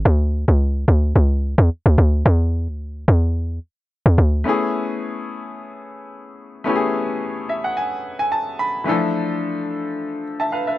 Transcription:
0.05 log drum bass D2
0.48 log drum bass C#2
0.88 log drum bass D2
1.16 log drum bass C#2
1.58 log drum bass E2
1.86 log drum bass D2
1.98 log drum bass D2
2.26 log drum bass E2
2.68 log drum bass D2
3.08 log drum bass E2
4.06 log drum bass E2
4.18 log drum bass D2
4.44 grand piano A3 B3 C#4 E4
4.49 grand piano G#4
6.64 grand piano A3 B3 C#4 E4
6.69 grand piano G4
6.76 grand piano G#4
7.49 grand piano E5
7.64 grand piano F#5
7.77 grand piano G#5
8.19 grand piano G#5
8.32 grand piano A5
8.59 grand piano B5
8.84 grand piano E3 A3 D4 E4
8.89 grand piano F3 A4
10.40 grand piano E5 A5
10.52 grand piano B4 F5
10.67 grand piano B4 E5

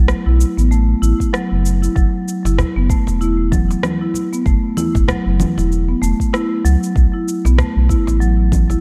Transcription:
Already playing: analog synth bass B1, marimba F#3
0.08 cross-stick, cabasa
0.26 analog synth bass B1, marimba E4
0.41 cabasa
0.57 analog synth bass A1, marimba B3, cabasa
0.71 marimba A3, cabasa
1.02 analog synth bass A1, marimba E4, cabasa
1.20 kick, cabasa
1.33 marimba F#3, cross-stick, cabasa
1.51 analog synth bass F#1
1.66 cabasa
1.82 marimba E4, cabasa
1.96 analog synth bass F#1, marimba F#3, kick, cabasa
2.28 cabasa
2.45 analog synth bass F#1, marimba E4, cajon slap, cabasa
2.58 cajon bass, cross-stick, cabasa
2.76 analog synth bass F#1, marimba B3
2.90 marimba A3, kick, cabasa
3.07 analog synth bass E1, cajon slap, cabasa
3.21 marimba E4, cabasa
3.52 marimba F#3, kick, low conga, cabasa
3.71 cajon slap, cabasa
3.83 cross-stick, low conga, cabasa
4.01 marimba E4
4.14 cajon slap, cabasa
4.32 marimba B3, cabasa
4.46 analog synth bass F#1, marimba A3, kick, cabasa
4.77 marimba E4, low conga, cabasa
4.95 analog synth bass F#1, kick, cajon bass, cajon slap, cabasa
5.08 marimba F#3, cajon bass, cross-stick, cabasa
5.26 analog synth bass F#1
5.40 low conga, cabasa
5.57 analog synth bass E1, marimba E4, cajon slap, cabasa
5.72 cabasa
5.89 marimba B3
6.02 analog synth bass E1, marimba A3, cabasa
6.20 kick, cabasa
6.33 marimba E4, cross-stick, cabasa
6.65 analog synth bass C#2, marimba F#3, cajon slap, cabasa
6.83 cabasa
6.96 analog synth bass B1, kick, cabasa
7.13 marimba E4
7.28 cabasa
7.45 analog synth bass B1, marimba B3, cajon slap, cabasa
7.58 marimba A3, cajon bass, cross-stick, cabasa
7.76 analog synth bass B1
7.89 marimba E4, kick, cabasa
8.07 analog synth bass A1, cajon slap, cabasa
8.20 marimba F#3, cabasa
8.52 kick, low conga, cabasa
8.70 marimba E4, cajon slap, cabasa

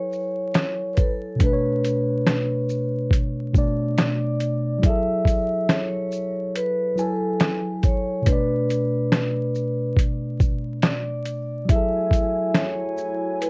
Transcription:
Already playing: tine electric piano F#3 E4 A4 G#5, vibraphone C#5
0.12 shaker
0.54 snare, closed hi-hat
0.94 vibraphone B4, kick, closed hi-hat, shaker
0.99 vibraphone A4
1.36 tine electric piano B2 A3
1.40 tine electric piano D4, vibraphone B4, kick, closed hi-hat
1.47 tine electric piano B4
1.53 tine electric piano C#5
1.84 closed hi-hat, shaker
2.26 snare, closed hi-hat
2.69 shaker
3.11 kick, closed hi-hat
3.53 tine electric piano B2 A3 D4, kick, shaker
3.58 tine electric piano D5
3.97 vibraphone D5, snare, closed hi-hat
4.40 closed hi-hat, shaker
4.79 tine electric piano F#3 E4
4.83 tine electric piano G#4, vibraphone E5, kick, closed hi-hat
4.89 tine electric piano A4
5.25 kick, closed hi-hat, shaker
5.69 vibraphone C#5, snare, closed hi-hat
6.12 shaker
6.56 vibraphone B4, closed hi-hat
6.96 tine electric piano F#3 E4 G#5, vibraphone A4, shaker
7.01 tine electric piano A4
7.40 snare, closed hi-hat
7.83 vibraphone C#5, kick, closed hi-hat, shaker
8.22 tine electric piano B2 A3
8.26 tine electric piano D4, vibraphone B4, kick, closed hi-hat
8.32 tine electric piano D5
8.70 closed hi-hat, shaker
9.12 snare, closed hi-hat
9.55 shaker
9.96 kick, closed hi-hat
10.40 kick, shaker
10.82 vibraphone D5, snare, closed hi-hat
11.25 closed hi-hat, shaker
11.65 tine electric piano F#3 E4, analog synth pad F#3 E4, kick, closed hi-hat
11.69 analog synth pad A3 G#5, tine electric piano G#4, vibraphone E5
11.76 tine electric piano A4
12.11 kick, closed hi-hat, shaker
12.55 vibraphone C#5, snare, closed hi-hat
12.98 shaker
13.41 vibraphone B4, closed hi-hat

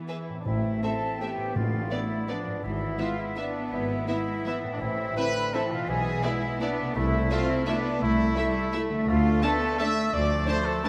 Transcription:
Already playing: viola section E3, harp E3 E4 E5, cello section B3
0.07 trumpet section E4, violin section G#4 B4 E5, harp B4, flute section E5
0.28 harp A2 E4
0.34 harp C4
0.38 trumpet section D4, harp E4, flute section D5
0.43 timpani A2, trumpet section E4, harp A4
0.47 double bass section A1, cello section A3, bassoon C4, oboe E5, flute section E5
0.82 viola section A3, violin section C4 E5, bassoon C4, cello section C4, french horn section C4 E4, trumpet section A4, oboe E5, flute section A5
1.20 viola section A3, cello section B3, french horn section C4 E4, violin section C4 E5, trumpet section G4, flute section G5
1.37 harp A2
1.42 harp B3
1.46 harp D4
1.51 harp B4
1.55 double bass section A1, timpani A2, cello section A3, bassoon B3, trumpet section F4, oboe D5, flute section F5
1.91 violin section B3 D5, viola section B3, french horn section B3 D4, trumpet section E4, flute section E5
2.28 cello section F3, violin section B3 D5, bassoon B3, viola section B3, french horn section B3 D4, trumpet section D4, oboe D5, flute section D5
2.46 harp G#2
2.51 harp B3
2.55 harp E4
2.60 double bass section G#1, cello section E3, trumpet section E4, harp B4, oboe E5
2.64 bassoon B3, flute section E5
2.98 cello section G#3, french horn section B3 E4, viola section B3, violin section E4 E5, trumpet section F4, flute section F5
3.19 trumpet section E4, flute section E5
3.36 viola section B3, cello section B3, french horn section B3 E4, trumpet section D4, violin section E4 E5, flute section D5
3.71 double bass section G#1, bassoon B3, trumpet section E4, oboe E5, flute section E5
4.08 cello section G#3, french horn section B3 E4, bassoon B3, viola section B3, trumpet section E4, violin section E4 E5, flute section E5, oboe E5
4.45 cello section E3, french horn section B3 E4, viola section B3, bassoon B3, trumpet section E4, violin section E4 E5, flute section E5, oboe E5
4.63 harp A2
4.68 harp C4
4.72 trumpet section D4, harp E4, flute section D5
4.77 double bass section A1, trumpet section E4, harp A4
4.81 bassoon C4, oboe E5, flute section E5
5.16 cello section D3, french horn section C4 E4, viola section C4, violin section E4 E5, trumpet section B4, flute section B5
5.53 cello section E3, viola section C4, bassoon C4, french horn section C4 E4, violin section E4 E5, trumpet section A4, oboe E5, flute section A5
5.69 harp B2, trumpet section F4, flute section F5
5.75 harp B3
5.79 harp E4
5.84 bassoon B3, trumpet section G#4, harp D5
5.88 double bass section B1, oboe E5, flute section G#5
6.23 cello section G#3, bassoon B3, viola section B3, french horn section B3 E4, violin section E4 D5, trumpet section E4, oboe E5, flute section E5
6.60 bassoon B3, french horn section B3 E4, viola section B3, cello section B3, trumpet section D4, violin section E4 D5, flute section D5, oboe E5
6.79 harp C3
6.83 harp A3
6.88 harp E4
6.92 double bass section C2, bassoon A3, trumpet section E4, harp A4, flute section E5, oboe E5
6.97 cello section A3
7.31 viola section A3, french horn section A3 E4, cello section C4, violin section E4 E5, trumpet section F4, flute section F5
7.49 trumpet section E4, flute section E5
7.66 viola section A3, cello section B3, trumpet section D4, violin section E4 E5, flute section D5
7.70 french horn section A3 E4
8.01 double bass section C2, cello section A3, bassoon A3, trumpet section E4, oboe E5, flute section E5
8.36 cello section G3, bassoon A3, viola section A3, french horn section A3 E4, violin section E4 E5, trumpet section E4, flute section E5, oboe E5
8.72 cello section A3, viola section A3, french horn section A3 E4, violin section E4 E5
8.89 harp D3
8.94 harp A3
8.99 harp D4
9.03 harp A4
9.07 double bass section D2, bassoon A3, trumpet section F4, oboe D5, flute section F5
9.42 viola section A3, bassoon A3, french horn section A3 D4, cello section B3, violin section D4 A5, trumpet section A4, oboe D5, flute section A5
9.78 cello section A3, viola section A3, french horn section A3 D4, violin section D4 A5, trumpet section E5, flute section E6
10.13 double bass section D2, cello section F3, bassoon A3, oboe D5, trumpet section D5, flute section D6
10.47 french horn section A3 D4, viola section A3, violin section D4 A5, trumpet section C5, flute section C6
10.66 trumpet section A4, flute section A5
10.83 cello section G3, french horn section A3 D4, viola section A3, violin section D4 A5, trumpet section B4, flute section B5

